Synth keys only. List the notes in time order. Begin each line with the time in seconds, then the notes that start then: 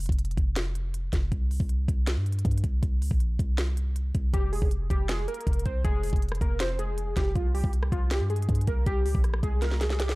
4.34 G4
4.53 G#4
4.90 G4
5.09 G#4
5.28 A#4
5.66 C5
5.85 G#4
6.03 G#4
6.41 A#4
6.60 C5
6.79 G#4
7.17 G4
7.35 F4
7.54 G4
7.92 F4
8.11 G4
8.30 G#4
8.68 A#4
8.86 G4
9.05 G4
9.43 G#4
9.62 A#4
9.81 G#4
10.00 G4